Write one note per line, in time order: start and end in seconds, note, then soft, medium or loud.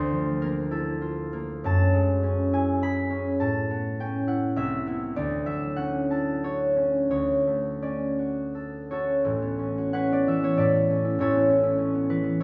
0.00 1.67 D2 medium
0.00 0.37 A3 soft
0.00 1.61 D4 medium
0.00 1.00 F4 soft
0.00 0.70 A4 medium
0.00 0.82 C5 medium
0.00 1.67 D5 medium
0.12 1.67 F3 soft
0.42 1.32 A#3 medium
0.42 1.67 A#4 medium
0.71 2.52 E4 medium
0.71 4.58 A4 medium
1.01 1.67 F4 medium
1.33 1.67 A#3 medium
1.64 3.42 F#2 medium
1.64 3.39 A5 loud
1.93 3.42 G#3 medium
2.23 3.09 C#4 medium
2.53 4.26 E4 soft
2.53 3.43 G#5 medium
2.83 3.43 G#4 medium
2.83 3.81 B5 loud
3.10 3.99 C#4 medium
3.40 4.58 A2 medium
3.40 4.58 A5 medium
3.71 4.85 B3 soft
4.00 4.59 C#4 soft
4.00 4.48 G5 medium
4.27 4.86 E4 soft
4.27 4.76 F#5 medium
4.56 5.17 C2 medium
4.56 5.45 E5 medium
4.86 5.18 B3 soft
4.86 6.11 E4 soft
5.16 7.09 D2 medium
5.16 7.81 D5 medium
5.46 9.37 F#3 soft
5.46 7.13 E5 medium
5.76 6.75 C#4 soft
5.76 9.66 F#5 medium
6.11 7.14 E4 soft
6.11 10.01 A5 medium
6.44 8.17 F#4 soft
6.44 7.09 C#5 medium
6.76 7.81 C#4 soft
7.11 9.28 D2 soft
7.11 8.89 C#5 medium
7.47 11.37 A3 soft
7.82 8.89 C#4 soft
7.82 9.27 D5 soft
8.19 8.90 F#4 soft
8.55 8.91 A4 soft
8.90 9.58 C#4 soft
8.90 9.77 F#4 medium
8.90 10.58 A4 medium
8.90 9.93 C#5 medium
9.24 10.59 A1 medium
9.24 10.56 A2 medium
9.42 10.09 B3 soft
9.59 9.92 C#4 soft
9.78 11.22 F#4 soft
9.93 10.89 C#4 soft
9.93 10.58 B4 medium
9.93 10.43 C#5 medium
9.93 11.21 F#5 medium
10.11 10.41 B3 soft
10.11 10.38 D5 medium
10.27 10.60 E3 soft
10.27 12.43 E5 medium
10.42 10.74 B3 soft
10.42 10.69 C#5 medium
10.57 11.19 A2 medium
10.57 11.20 A4 medium
10.57 12.08 B4 medium
10.57 11.21 D5 medium
10.75 11.34 B3 soft
10.90 11.48 C#4 soft
11.05 11.21 E4 soft
11.19 12.43 A1 medium
11.19 12.43 A2 medium
11.19 11.62 E4 medium
11.19 12.40 A4 medium
11.19 12.39 C#5 medium
11.35 11.93 B3 soft
11.49 11.77 C#4 soft
11.63 12.40 E4 soft
11.78 12.43 C#4 soft
11.94 12.22 B3 soft
12.09 12.43 E3 soft
12.09 12.43 B4 medium
12.23 12.43 B3 soft